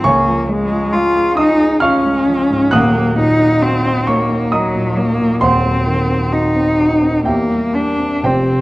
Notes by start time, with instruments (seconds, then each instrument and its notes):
0.04 grand piano C#2 C#5 G#5 C#6, cello A#3
0.28 grand piano F3
0.49 grand piano G#3, cello G#3
0.72 grand piano F4
0.92 grand piano G#3, cello F4
1.16 grand piano G#4
1.37 cello D#4, grand piano F4 D#5 D#6
1.60 grand piano G#4
1.80 cello C#4, grand piano F4 F5 C#6 F6
2.05 grand piano G#3
2.27 grand piano F3
2.50 grand piano G#2
2.71 grand piano D#1 D#2 F#5 D#6 F#6, cello A#3
2.95 grand piano F#3
3.18 grand piano A#2, cello D#4
3.40 grand piano D#4
3.62 cello C4, grand piano F#4
3.86 grand piano D#4
4.07 cello A#3, grand piano F#4 C#5 C#6
4.29 grand piano D#4
4.52 cello F#3, grand piano F#3 D#5 A#5 D#6
4.75 grand piano A#2
4.98 grand piano F#3, cello A#3
5.20 grand piano A#2
5.41 grand piano D#1 D#2 C5 F#5 C6, cello C4
5.66 grand piano F#3
5.87 grand piano D#3
6.09 grand piano C4
6.32 cello D#4, grand piano F#4
6.55 grand piano C4
6.79 grand piano F#4
7.02 grand piano C4
7.25 grand piano E2 G4 E5 G5, cello A#3
7.50 grand piano G3
7.74 grand piano A#3, cello D4
7.99 grand piano C4
8.23 grand piano F1 F2 G4 C5 G5, cello C4
8.50 grand piano C3